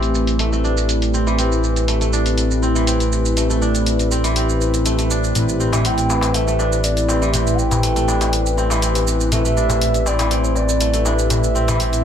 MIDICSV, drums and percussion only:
0, 0, Header, 1, 3, 480
1, 0, Start_track
1, 0, Key_signature, 0, "minor"
1, 0, Tempo, 495868
1, 1341, Time_signature, 4, 2, 24, 8
1, 11655, End_track
2, 0, Start_track
2, 0, Title_t, "Darbuka"
2, 5185, Note_on_c, 9, 64, 75
2, 5282, Note_off_c, 9, 64, 0
2, 5543, Note_on_c, 9, 63, 83
2, 5547, Note_on_c, 9, 64, 77
2, 5640, Note_off_c, 9, 63, 0
2, 5644, Note_off_c, 9, 64, 0
2, 5904, Note_on_c, 9, 62, 93
2, 6000, Note_off_c, 9, 62, 0
2, 6014, Note_on_c, 9, 63, 86
2, 6111, Note_off_c, 9, 63, 0
2, 6380, Note_on_c, 9, 62, 66
2, 6477, Note_off_c, 9, 62, 0
2, 6859, Note_on_c, 9, 63, 66
2, 6955, Note_off_c, 9, 63, 0
2, 7100, Note_on_c, 9, 64, 87
2, 7110, Note_on_c, 9, 63, 49
2, 7197, Note_off_c, 9, 64, 0
2, 7207, Note_off_c, 9, 63, 0
2, 7466, Note_on_c, 9, 64, 94
2, 7467, Note_on_c, 9, 63, 71
2, 7563, Note_off_c, 9, 64, 0
2, 7564, Note_off_c, 9, 63, 0
2, 7824, Note_on_c, 9, 62, 87
2, 7921, Note_off_c, 9, 62, 0
2, 7948, Note_on_c, 9, 63, 78
2, 8045, Note_off_c, 9, 63, 0
2, 8304, Note_on_c, 9, 62, 75
2, 8401, Note_off_c, 9, 62, 0
2, 8423, Note_on_c, 9, 62, 96
2, 8520, Note_off_c, 9, 62, 0
2, 8671, Note_on_c, 9, 62, 70
2, 8767, Note_off_c, 9, 62, 0
2, 9019, Note_on_c, 9, 64, 88
2, 9116, Note_off_c, 9, 64, 0
2, 9380, Note_on_c, 9, 64, 91
2, 9386, Note_on_c, 9, 63, 70
2, 9477, Note_off_c, 9, 64, 0
2, 9482, Note_off_c, 9, 63, 0
2, 9739, Note_on_c, 9, 62, 93
2, 9836, Note_off_c, 9, 62, 0
2, 9864, Note_on_c, 9, 63, 88
2, 9961, Note_off_c, 9, 63, 0
2, 10217, Note_on_c, 9, 62, 72
2, 10314, Note_off_c, 9, 62, 0
2, 10699, Note_on_c, 9, 63, 70
2, 10796, Note_off_c, 9, 63, 0
2, 10942, Note_on_c, 9, 64, 87
2, 10946, Note_on_c, 9, 63, 55
2, 11038, Note_off_c, 9, 64, 0
2, 11043, Note_off_c, 9, 63, 0
2, 11309, Note_on_c, 9, 63, 70
2, 11310, Note_on_c, 9, 64, 105
2, 11406, Note_off_c, 9, 63, 0
2, 11407, Note_off_c, 9, 64, 0
2, 11655, End_track
3, 0, Start_track
3, 0, Title_t, "Drums"
3, 25, Note_on_c, 9, 42, 28
3, 29, Note_on_c, 9, 82, 51
3, 121, Note_off_c, 9, 42, 0
3, 126, Note_off_c, 9, 82, 0
3, 143, Note_on_c, 9, 82, 89
3, 240, Note_off_c, 9, 82, 0
3, 265, Note_on_c, 9, 42, 41
3, 269, Note_on_c, 9, 82, 54
3, 362, Note_off_c, 9, 42, 0
3, 366, Note_off_c, 9, 82, 0
3, 380, Note_on_c, 9, 42, 61
3, 384, Note_on_c, 9, 82, 51
3, 477, Note_off_c, 9, 42, 0
3, 481, Note_off_c, 9, 82, 0
3, 510, Note_on_c, 9, 82, 49
3, 607, Note_off_c, 9, 82, 0
3, 624, Note_on_c, 9, 82, 49
3, 721, Note_off_c, 9, 82, 0
3, 750, Note_on_c, 9, 82, 91
3, 846, Note_off_c, 9, 82, 0
3, 861, Note_on_c, 9, 42, 61
3, 865, Note_on_c, 9, 82, 86
3, 958, Note_off_c, 9, 42, 0
3, 962, Note_off_c, 9, 82, 0
3, 988, Note_on_c, 9, 42, 41
3, 992, Note_on_c, 9, 82, 48
3, 1085, Note_off_c, 9, 42, 0
3, 1089, Note_off_c, 9, 82, 0
3, 1105, Note_on_c, 9, 82, 93
3, 1202, Note_off_c, 9, 82, 0
3, 1232, Note_on_c, 9, 82, 52
3, 1329, Note_off_c, 9, 82, 0
3, 1341, Note_on_c, 9, 42, 57
3, 1346, Note_on_c, 9, 82, 86
3, 1438, Note_off_c, 9, 42, 0
3, 1442, Note_off_c, 9, 82, 0
3, 1471, Note_on_c, 9, 82, 51
3, 1568, Note_off_c, 9, 82, 0
3, 1585, Note_on_c, 9, 82, 55
3, 1682, Note_off_c, 9, 82, 0
3, 1707, Note_on_c, 9, 42, 27
3, 1711, Note_on_c, 9, 82, 88
3, 1804, Note_off_c, 9, 42, 0
3, 1808, Note_off_c, 9, 82, 0
3, 1821, Note_on_c, 9, 42, 60
3, 1825, Note_on_c, 9, 82, 54
3, 1918, Note_off_c, 9, 42, 0
3, 1922, Note_off_c, 9, 82, 0
3, 1947, Note_on_c, 9, 42, 28
3, 1951, Note_on_c, 9, 82, 55
3, 2044, Note_off_c, 9, 42, 0
3, 2048, Note_off_c, 9, 82, 0
3, 2064, Note_on_c, 9, 82, 85
3, 2161, Note_off_c, 9, 82, 0
3, 2185, Note_on_c, 9, 42, 41
3, 2189, Note_on_c, 9, 82, 52
3, 2282, Note_off_c, 9, 42, 0
3, 2286, Note_off_c, 9, 82, 0
3, 2300, Note_on_c, 9, 42, 61
3, 2304, Note_on_c, 9, 82, 52
3, 2397, Note_off_c, 9, 42, 0
3, 2401, Note_off_c, 9, 82, 0
3, 2430, Note_on_c, 9, 82, 50
3, 2527, Note_off_c, 9, 82, 0
3, 2545, Note_on_c, 9, 82, 52
3, 2642, Note_off_c, 9, 82, 0
3, 2670, Note_on_c, 9, 82, 93
3, 2767, Note_off_c, 9, 82, 0
3, 2781, Note_on_c, 9, 42, 59
3, 2785, Note_on_c, 9, 82, 90
3, 2878, Note_off_c, 9, 42, 0
3, 2882, Note_off_c, 9, 82, 0
3, 2907, Note_on_c, 9, 42, 40
3, 2911, Note_on_c, 9, 82, 52
3, 3004, Note_off_c, 9, 42, 0
3, 3008, Note_off_c, 9, 82, 0
3, 3025, Note_on_c, 9, 82, 91
3, 3122, Note_off_c, 9, 82, 0
3, 3151, Note_on_c, 9, 82, 54
3, 3248, Note_off_c, 9, 82, 0
3, 3261, Note_on_c, 9, 42, 57
3, 3265, Note_on_c, 9, 82, 88
3, 3358, Note_off_c, 9, 42, 0
3, 3362, Note_off_c, 9, 82, 0
3, 3391, Note_on_c, 9, 82, 52
3, 3488, Note_off_c, 9, 82, 0
3, 3506, Note_on_c, 9, 82, 53
3, 3603, Note_off_c, 9, 82, 0
3, 3627, Note_on_c, 9, 42, 28
3, 3631, Note_on_c, 9, 82, 90
3, 3724, Note_off_c, 9, 42, 0
3, 3728, Note_off_c, 9, 82, 0
3, 3741, Note_on_c, 9, 42, 60
3, 3745, Note_on_c, 9, 82, 50
3, 3838, Note_off_c, 9, 42, 0
3, 3842, Note_off_c, 9, 82, 0
3, 3866, Note_on_c, 9, 42, 30
3, 3870, Note_on_c, 9, 82, 51
3, 3963, Note_off_c, 9, 42, 0
3, 3967, Note_off_c, 9, 82, 0
3, 3985, Note_on_c, 9, 82, 89
3, 4081, Note_off_c, 9, 82, 0
3, 4106, Note_on_c, 9, 42, 41
3, 4110, Note_on_c, 9, 82, 52
3, 4203, Note_off_c, 9, 42, 0
3, 4207, Note_off_c, 9, 82, 0
3, 4220, Note_on_c, 9, 42, 62
3, 4224, Note_on_c, 9, 82, 52
3, 4317, Note_off_c, 9, 42, 0
3, 4321, Note_off_c, 9, 82, 0
3, 4350, Note_on_c, 9, 82, 50
3, 4447, Note_off_c, 9, 82, 0
3, 4464, Note_on_c, 9, 82, 50
3, 4561, Note_off_c, 9, 82, 0
3, 4586, Note_on_c, 9, 42, 28
3, 4591, Note_on_c, 9, 82, 89
3, 4683, Note_off_c, 9, 42, 0
3, 4687, Note_off_c, 9, 82, 0
3, 4700, Note_on_c, 9, 42, 60
3, 4704, Note_on_c, 9, 82, 89
3, 4797, Note_off_c, 9, 42, 0
3, 4801, Note_off_c, 9, 82, 0
3, 4827, Note_on_c, 9, 42, 39
3, 4831, Note_on_c, 9, 82, 50
3, 4924, Note_off_c, 9, 42, 0
3, 4928, Note_off_c, 9, 82, 0
3, 4945, Note_on_c, 9, 82, 94
3, 5042, Note_off_c, 9, 82, 0
3, 5072, Note_on_c, 9, 82, 49
3, 5169, Note_off_c, 9, 82, 0
3, 5182, Note_on_c, 9, 42, 61
3, 5186, Note_on_c, 9, 82, 88
3, 5279, Note_off_c, 9, 42, 0
3, 5283, Note_off_c, 9, 82, 0
3, 5312, Note_on_c, 9, 82, 52
3, 5409, Note_off_c, 9, 82, 0
3, 5425, Note_on_c, 9, 82, 51
3, 5522, Note_off_c, 9, 82, 0
3, 5547, Note_on_c, 9, 42, 28
3, 5551, Note_on_c, 9, 82, 86
3, 5644, Note_off_c, 9, 42, 0
3, 5648, Note_off_c, 9, 82, 0
3, 5661, Note_on_c, 9, 42, 63
3, 5665, Note_on_c, 9, 82, 51
3, 5758, Note_off_c, 9, 42, 0
3, 5762, Note_off_c, 9, 82, 0
3, 5786, Note_on_c, 9, 42, 30
3, 5791, Note_on_c, 9, 82, 50
3, 5883, Note_off_c, 9, 42, 0
3, 5887, Note_off_c, 9, 82, 0
3, 5905, Note_on_c, 9, 82, 83
3, 6002, Note_off_c, 9, 82, 0
3, 6026, Note_on_c, 9, 42, 42
3, 6031, Note_on_c, 9, 82, 50
3, 6123, Note_off_c, 9, 42, 0
3, 6127, Note_off_c, 9, 82, 0
3, 6141, Note_on_c, 9, 42, 63
3, 6145, Note_on_c, 9, 82, 49
3, 6237, Note_off_c, 9, 42, 0
3, 6242, Note_off_c, 9, 82, 0
3, 6271, Note_on_c, 9, 82, 49
3, 6368, Note_off_c, 9, 82, 0
3, 6384, Note_on_c, 9, 82, 48
3, 6481, Note_off_c, 9, 82, 0
3, 6510, Note_on_c, 9, 82, 91
3, 6607, Note_off_c, 9, 82, 0
3, 6620, Note_on_c, 9, 42, 63
3, 6624, Note_on_c, 9, 82, 89
3, 6717, Note_off_c, 9, 42, 0
3, 6721, Note_off_c, 9, 82, 0
3, 6747, Note_on_c, 9, 42, 40
3, 6751, Note_on_c, 9, 82, 47
3, 6843, Note_off_c, 9, 42, 0
3, 6848, Note_off_c, 9, 82, 0
3, 6866, Note_on_c, 9, 82, 87
3, 6963, Note_off_c, 9, 82, 0
3, 6991, Note_on_c, 9, 82, 49
3, 7088, Note_off_c, 9, 82, 0
3, 7101, Note_on_c, 9, 42, 64
3, 7106, Note_on_c, 9, 82, 83
3, 7198, Note_off_c, 9, 42, 0
3, 7202, Note_off_c, 9, 82, 0
3, 7232, Note_on_c, 9, 82, 50
3, 7329, Note_off_c, 9, 82, 0
3, 7346, Note_on_c, 9, 82, 49
3, 7443, Note_off_c, 9, 82, 0
3, 7467, Note_on_c, 9, 42, 31
3, 7471, Note_on_c, 9, 82, 82
3, 7564, Note_off_c, 9, 42, 0
3, 7568, Note_off_c, 9, 82, 0
3, 7582, Note_on_c, 9, 42, 67
3, 7586, Note_on_c, 9, 82, 49
3, 7679, Note_off_c, 9, 42, 0
3, 7683, Note_off_c, 9, 82, 0
3, 7708, Note_on_c, 9, 42, 31
3, 7712, Note_on_c, 9, 82, 50
3, 7804, Note_off_c, 9, 42, 0
3, 7809, Note_off_c, 9, 82, 0
3, 7826, Note_on_c, 9, 82, 82
3, 7923, Note_off_c, 9, 82, 0
3, 7947, Note_on_c, 9, 42, 44
3, 7951, Note_on_c, 9, 82, 50
3, 8044, Note_off_c, 9, 42, 0
3, 8048, Note_off_c, 9, 82, 0
3, 8062, Note_on_c, 9, 42, 66
3, 8067, Note_on_c, 9, 82, 46
3, 8159, Note_off_c, 9, 42, 0
3, 8164, Note_off_c, 9, 82, 0
3, 8193, Note_on_c, 9, 82, 46
3, 8289, Note_off_c, 9, 82, 0
3, 8306, Note_on_c, 9, 82, 46
3, 8403, Note_off_c, 9, 82, 0
3, 8431, Note_on_c, 9, 82, 84
3, 8528, Note_off_c, 9, 82, 0
3, 8541, Note_on_c, 9, 42, 65
3, 8545, Note_on_c, 9, 82, 84
3, 8638, Note_off_c, 9, 42, 0
3, 8642, Note_off_c, 9, 82, 0
3, 8666, Note_on_c, 9, 42, 43
3, 8671, Note_on_c, 9, 82, 47
3, 8763, Note_off_c, 9, 42, 0
3, 8767, Note_off_c, 9, 82, 0
3, 8785, Note_on_c, 9, 82, 88
3, 8881, Note_off_c, 9, 82, 0
3, 8910, Note_on_c, 9, 82, 50
3, 9007, Note_off_c, 9, 82, 0
3, 9021, Note_on_c, 9, 42, 65
3, 9025, Note_on_c, 9, 82, 79
3, 9118, Note_off_c, 9, 42, 0
3, 9122, Note_off_c, 9, 82, 0
3, 9151, Note_on_c, 9, 82, 49
3, 9248, Note_off_c, 9, 82, 0
3, 9265, Note_on_c, 9, 82, 50
3, 9362, Note_off_c, 9, 82, 0
3, 9386, Note_on_c, 9, 42, 30
3, 9390, Note_on_c, 9, 82, 82
3, 9483, Note_off_c, 9, 42, 0
3, 9487, Note_off_c, 9, 82, 0
3, 9501, Note_on_c, 9, 42, 66
3, 9505, Note_on_c, 9, 82, 49
3, 9598, Note_off_c, 9, 42, 0
3, 9602, Note_off_c, 9, 82, 0
3, 9626, Note_on_c, 9, 42, 31
3, 9630, Note_on_c, 9, 82, 49
3, 9723, Note_off_c, 9, 42, 0
3, 9727, Note_off_c, 9, 82, 0
3, 9744, Note_on_c, 9, 82, 83
3, 9841, Note_off_c, 9, 82, 0
3, 9865, Note_on_c, 9, 42, 44
3, 9870, Note_on_c, 9, 82, 49
3, 9962, Note_off_c, 9, 42, 0
3, 9966, Note_off_c, 9, 82, 0
3, 9980, Note_on_c, 9, 42, 65
3, 9984, Note_on_c, 9, 82, 47
3, 10077, Note_off_c, 9, 42, 0
3, 10081, Note_off_c, 9, 82, 0
3, 10109, Note_on_c, 9, 82, 46
3, 10206, Note_off_c, 9, 82, 0
3, 10223, Note_on_c, 9, 82, 47
3, 10320, Note_off_c, 9, 82, 0
3, 10349, Note_on_c, 9, 82, 85
3, 10446, Note_off_c, 9, 82, 0
3, 10459, Note_on_c, 9, 42, 67
3, 10463, Note_on_c, 9, 82, 86
3, 10556, Note_off_c, 9, 42, 0
3, 10560, Note_off_c, 9, 82, 0
3, 10586, Note_on_c, 9, 42, 45
3, 10590, Note_on_c, 9, 82, 46
3, 10683, Note_off_c, 9, 42, 0
3, 10687, Note_off_c, 9, 82, 0
3, 10704, Note_on_c, 9, 82, 84
3, 10801, Note_off_c, 9, 82, 0
3, 10831, Note_on_c, 9, 82, 50
3, 10927, Note_off_c, 9, 82, 0
3, 10941, Note_on_c, 9, 42, 62
3, 10945, Note_on_c, 9, 82, 83
3, 11037, Note_off_c, 9, 42, 0
3, 11042, Note_off_c, 9, 82, 0
3, 11070, Note_on_c, 9, 82, 49
3, 11167, Note_off_c, 9, 82, 0
3, 11186, Note_on_c, 9, 82, 51
3, 11283, Note_off_c, 9, 82, 0
3, 11307, Note_on_c, 9, 42, 30
3, 11312, Note_on_c, 9, 82, 80
3, 11404, Note_off_c, 9, 42, 0
3, 11408, Note_off_c, 9, 82, 0
3, 11421, Note_on_c, 9, 42, 65
3, 11425, Note_on_c, 9, 82, 49
3, 11518, Note_off_c, 9, 42, 0
3, 11522, Note_off_c, 9, 82, 0
3, 11547, Note_on_c, 9, 42, 31
3, 11552, Note_on_c, 9, 82, 50
3, 11644, Note_off_c, 9, 42, 0
3, 11649, Note_off_c, 9, 82, 0
3, 11655, End_track
0, 0, End_of_file